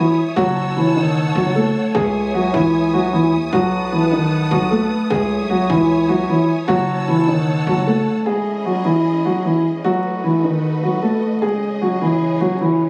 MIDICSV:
0, 0, Header, 1, 4, 480
1, 0, Start_track
1, 0, Key_signature, 4, "minor"
1, 0, Tempo, 394737
1, 447, Time_signature, 4, 2, 24, 8
1, 15682, End_track
2, 0, Start_track
2, 0, Title_t, "String section"
2, 0, Program_c, 0, 48
2, 0, Note_on_c, 0, 73, 82
2, 0, Note_on_c, 0, 76, 77
2, 0, Note_on_c, 0, 80, 74
2, 0, Note_on_c, 0, 87, 91
2, 399, Note_off_c, 0, 87, 0
2, 428, Note_off_c, 0, 76, 0
2, 428, Note_off_c, 0, 80, 0
2, 447, Note_on_c, 0, 78, 76
2, 447, Note_on_c, 0, 81, 75
2, 448, Note_on_c, 0, 88, 87
2, 2348, Note_off_c, 0, 78, 0
2, 2348, Note_off_c, 0, 81, 0
2, 2348, Note_off_c, 0, 88, 0
2, 2368, Note_on_c, 0, 76, 71
2, 2368, Note_on_c, 0, 80, 75
2, 2368, Note_on_c, 0, 87, 89
2, 4239, Note_off_c, 0, 73, 0
2, 4268, Note_off_c, 0, 80, 0
2, 4269, Note_off_c, 0, 76, 0
2, 4287, Note_on_c, 0, 78, 75
2, 4288, Note_on_c, 0, 71, 84
2, 4288, Note_on_c, 0, 81, 76
2, 6188, Note_off_c, 0, 71, 0
2, 6188, Note_off_c, 0, 78, 0
2, 6188, Note_off_c, 0, 81, 0
2, 6208, Note_on_c, 0, 73, 83
2, 6208, Note_on_c, 0, 76, 75
2, 6208, Note_on_c, 0, 80, 74
2, 8079, Note_off_c, 0, 87, 0
2, 8108, Note_off_c, 0, 76, 0
2, 8109, Note_off_c, 0, 80, 0
2, 8128, Note_on_c, 0, 78, 75
2, 8128, Note_on_c, 0, 81, 77
2, 8128, Note_on_c, 0, 88, 87
2, 10009, Note_off_c, 0, 73, 0
2, 10028, Note_off_c, 0, 78, 0
2, 10028, Note_off_c, 0, 81, 0
2, 10028, Note_off_c, 0, 88, 0
2, 10048, Note_on_c, 0, 61, 75
2, 10048, Note_on_c, 0, 64, 69
2, 10048, Note_on_c, 0, 68, 73
2, 10048, Note_on_c, 0, 75, 86
2, 11948, Note_off_c, 0, 61, 0
2, 11948, Note_off_c, 0, 64, 0
2, 11948, Note_off_c, 0, 68, 0
2, 11949, Note_off_c, 0, 75, 0
2, 11967, Note_on_c, 0, 75, 71
2, 11968, Note_on_c, 0, 57, 78
2, 11968, Note_on_c, 0, 66, 71
2, 11968, Note_on_c, 0, 71, 83
2, 13868, Note_off_c, 0, 57, 0
2, 13868, Note_off_c, 0, 66, 0
2, 13868, Note_off_c, 0, 71, 0
2, 13888, Note_on_c, 0, 49, 77
2, 13888, Note_on_c, 0, 61, 72
2, 13888, Note_on_c, 0, 68, 87
2, 15682, Note_off_c, 0, 49, 0
2, 15682, Note_off_c, 0, 61, 0
2, 15682, Note_off_c, 0, 68, 0
2, 15682, Note_off_c, 0, 75, 0
2, 15682, End_track
3, 0, Start_track
3, 0, Title_t, "Grand piano"
3, 0, Program_c, 1, 0
3, 0, Note_on_c, 1, 52, 62
3, 0, Note_on_c, 1, 64, 81
3, 193, Note_off_c, 1, 64, 0
3, 198, Note_off_c, 1, 52, 0
3, 441, Note_on_c, 1, 66, 121
3, 451, Note_on_c, 1, 54, 100
3, 895, Note_off_c, 1, 66, 0
3, 901, Note_off_c, 1, 54, 0
3, 930, Note_on_c, 1, 64, 81
3, 939, Note_on_c, 1, 52, 66
3, 1152, Note_off_c, 1, 64, 0
3, 1157, Note_off_c, 1, 52, 0
3, 1170, Note_on_c, 1, 63, 87
3, 1180, Note_on_c, 1, 51, 64
3, 1620, Note_off_c, 1, 63, 0
3, 1625, Note_off_c, 1, 51, 0
3, 1652, Note_on_c, 1, 66, 77
3, 1661, Note_on_c, 1, 54, 62
3, 1873, Note_off_c, 1, 66, 0
3, 1878, Note_off_c, 1, 54, 0
3, 1892, Note_on_c, 1, 69, 88
3, 1901, Note_on_c, 1, 57, 62
3, 2341, Note_off_c, 1, 69, 0
3, 2346, Note_off_c, 1, 57, 0
3, 2367, Note_on_c, 1, 68, 107
3, 2377, Note_on_c, 1, 56, 78
3, 2818, Note_off_c, 1, 68, 0
3, 2823, Note_off_c, 1, 56, 0
3, 2843, Note_on_c, 1, 66, 82
3, 2853, Note_on_c, 1, 54, 66
3, 3068, Note_off_c, 1, 66, 0
3, 3074, Note_off_c, 1, 54, 0
3, 3079, Note_on_c, 1, 64, 81
3, 3089, Note_on_c, 1, 52, 57
3, 3534, Note_off_c, 1, 64, 0
3, 3539, Note_off_c, 1, 52, 0
3, 3571, Note_on_c, 1, 66, 85
3, 3581, Note_on_c, 1, 54, 68
3, 3792, Note_off_c, 1, 66, 0
3, 3798, Note_off_c, 1, 54, 0
3, 3806, Note_on_c, 1, 64, 77
3, 3816, Note_on_c, 1, 52, 66
3, 4030, Note_off_c, 1, 64, 0
3, 4035, Note_off_c, 1, 52, 0
3, 4291, Note_on_c, 1, 66, 112
3, 4301, Note_on_c, 1, 54, 90
3, 4741, Note_off_c, 1, 66, 0
3, 4746, Note_off_c, 1, 54, 0
3, 4769, Note_on_c, 1, 64, 80
3, 4779, Note_on_c, 1, 52, 64
3, 4992, Note_off_c, 1, 64, 0
3, 4997, Note_off_c, 1, 52, 0
3, 5008, Note_on_c, 1, 63, 77
3, 5018, Note_on_c, 1, 51, 67
3, 5459, Note_off_c, 1, 63, 0
3, 5464, Note_off_c, 1, 51, 0
3, 5490, Note_on_c, 1, 66, 84
3, 5500, Note_on_c, 1, 54, 59
3, 5712, Note_off_c, 1, 66, 0
3, 5717, Note_off_c, 1, 54, 0
3, 5726, Note_on_c, 1, 69, 87
3, 5735, Note_on_c, 1, 57, 71
3, 6178, Note_off_c, 1, 69, 0
3, 6183, Note_off_c, 1, 57, 0
3, 6206, Note_on_c, 1, 68, 109
3, 6216, Note_on_c, 1, 56, 86
3, 6658, Note_off_c, 1, 68, 0
3, 6663, Note_off_c, 1, 56, 0
3, 6685, Note_on_c, 1, 66, 90
3, 6695, Note_on_c, 1, 54, 67
3, 6909, Note_off_c, 1, 66, 0
3, 6915, Note_off_c, 1, 54, 0
3, 6930, Note_on_c, 1, 64, 82
3, 6939, Note_on_c, 1, 52, 58
3, 7380, Note_off_c, 1, 64, 0
3, 7385, Note_off_c, 1, 52, 0
3, 7404, Note_on_c, 1, 66, 86
3, 7414, Note_on_c, 1, 54, 63
3, 7629, Note_off_c, 1, 66, 0
3, 7634, Note_off_c, 1, 54, 0
3, 7651, Note_on_c, 1, 64, 84
3, 7661, Note_on_c, 1, 52, 61
3, 7872, Note_off_c, 1, 64, 0
3, 7878, Note_off_c, 1, 52, 0
3, 8120, Note_on_c, 1, 66, 121
3, 8130, Note_on_c, 1, 54, 99
3, 8575, Note_off_c, 1, 66, 0
3, 8580, Note_off_c, 1, 54, 0
3, 8609, Note_on_c, 1, 64, 80
3, 8619, Note_on_c, 1, 52, 67
3, 8831, Note_off_c, 1, 64, 0
3, 8836, Note_off_c, 1, 52, 0
3, 8849, Note_on_c, 1, 63, 85
3, 8858, Note_on_c, 1, 51, 67
3, 9299, Note_off_c, 1, 63, 0
3, 9304, Note_off_c, 1, 51, 0
3, 9330, Note_on_c, 1, 66, 81
3, 9340, Note_on_c, 1, 54, 63
3, 9552, Note_off_c, 1, 66, 0
3, 9557, Note_off_c, 1, 54, 0
3, 9570, Note_on_c, 1, 69, 88
3, 9580, Note_on_c, 1, 57, 61
3, 10020, Note_off_c, 1, 69, 0
3, 10025, Note_off_c, 1, 57, 0
3, 10045, Note_on_c, 1, 68, 100
3, 10055, Note_on_c, 1, 56, 74
3, 10497, Note_off_c, 1, 68, 0
3, 10503, Note_off_c, 1, 56, 0
3, 10522, Note_on_c, 1, 66, 76
3, 10532, Note_on_c, 1, 54, 62
3, 10748, Note_off_c, 1, 66, 0
3, 10753, Note_off_c, 1, 54, 0
3, 10757, Note_on_c, 1, 64, 77
3, 10767, Note_on_c, 1, 52, 57
3, 11213, Note_off_c, 1, 64, 0
3, 11218, Note_off_c, 1, 52, 0
3, 11251, Note_on_c, 1, 66, 83
3, 11260, Note_on_c, 1, 54, 64
3, 11472, Note_off_c, 1, 66, 0
3, 11477, Note_off_c, 1, 54, 0
3, 11485, Note_on_c, 1, 64, 73
3, 11495, Note_on_c, 1, 52, 60
3, 11709, Note_off_c, 1, 64, 0
3, 11715, Note_off_c, 1, 52, 0
3, 11971, Note_on_c, 1, 66, 109
3, 11981, Note_on_c, 1, 54, 85
3, 12421, Note_off_c, 1, 66, 0
3, 12426, Note_off_c, 1, 54, 0
3, 12449, Note_on_c, 1, 64, 76
3, 12459, Note_on_c, 1, 52, 60
3, 12671, Note_off_c, 1, 64, 0
3, 12677, Note_off_c, 1, 52, 0
3, 12688, Note_on_c, 1, 63, 71
3, 12698, Note_on_c, 1, 51, 66
3, 13139, Note_off_c, 1, 63, 0
3, 13144, Note_off_c, 1, 51, 0
3, 13170, Note_on_c, 1, 66, 78
3, 13180, Note_on_c, 1, 54, 55
3, 13392, Note_off_c, 1, 66, 0
3, 13397, Note_off_c, 1, 54, 0
3, 13405, Note_on_c, 1, 69, 79
3, 13415, Note_on_c, 1, 57, 67
3, 13858, Note_off_c, 1, 69, 0
3, 13863, Note_off_c, 1, 57, 0
3, 13886, Note_on_c, 1, 68, 97
3, 13896, Note_on_c, 1, 56, 82
3, 14338, Note_off_c, 1, 68, 0
3, 14343, Note_off_c, 1, 56, 0
3, 14366, Note_on_c, 1, 66, 85
3, 14375, Note_on_c, 1, 54, 61
3, 14590, Note_off_c, 1, 66, 0
3, 14595, Note_off_c, 1, 54, 0
3, 14610, Note_on_c, 1, 64, 75
3, 14620, Note_on_c, 1, 52, 56
3, 15060, Note_off_c, 1, 64, 0
3, 15065, Note_off_c, 1, 52, 0
3, 15085, Note_on_c, 1, 66, 82
3, 15094, Note_on_c, 1, 54, 63
3, 15309, Note_off_c, 1, 66, 0
3, 15314, Note_off_c, 1, 54, 0
3, 15332, Note_on_c, 1, 64, 77
3, 15341, Note_on_c, 1, 52, 60
3, 15553, Note_off_c, 1, 64, 0
3, 15558, Note_off_c, 1, 52, 0
3, 15682, End_track
4, 0, Start_track
4, 0, Title_t, "808-style bass"
4, 0, Program_c, 2, 38
4, 447, Note_on_c, 2, 30, 115
4, 1599, Note_off_c, 2, 30, 0
4, 1648, Note_on_c, 2, 30, 112
4, 2108, Note_off_c, 2, 30, 0
4, 2368, Note_on_c, 2, 37, 113
4, 3059, Note_off_c, 2, 37, 0
4, 3088, Note_on_c, 2, 37, 104
4, 4048, Note_on_c, 2, 39, 99
4, 4066, Note_off_c, 2, 37, 0
4, 4276, Note_off_c, 2, 39, 0
4, 4287, Note_on_c, 2, 35, 119
4, 5439, Note_off_c, 2, 35, 0
4, 5488, Note_on_c, 2, 35, 112
4, 5948, Note_off_c, 2, 35, 0
4, 6207, Note_on_c, 2, 37, 115
4, 6575, Note_on_c, 2, 35, 105
4, 6593, Note_off_c, 2, 37, 0
4, 6910, Note_off_c, 2, 35, 0
4, 6927, Note_on_c, 2, 37, 104
4, 7619, Note_off_c, 2, 37, 0
4, 8127, Note_on_c, 2, 30, 118
4, 9279, Note_off_c, 2, 30, 0
4, 9327, Note_on_c, 2, 30, 113
4, 9788, Note_off_c, 2, 30, 0
4, 15682, End_track
0, 0, End_of_file